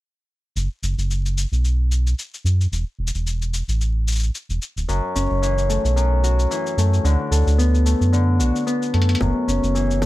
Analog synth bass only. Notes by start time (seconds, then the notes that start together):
0.56 F#1
0.83 F#1
0.97 F#1
1.52 B1
2.44 F#2
2.72 E1
2.98 E1
3.14 E1
3.68 A1
4.49 E1
4.76 D1
4.88 F#1
5.15 F#1
5.30 F#1
5.84 B1
6.77 F#2
7.04 D2
7.31 D2
7.46 D2
8.01 F#2
8.39 B1
8.94 F#2
9.21 F#1
9.48 F#1
9.63 F#1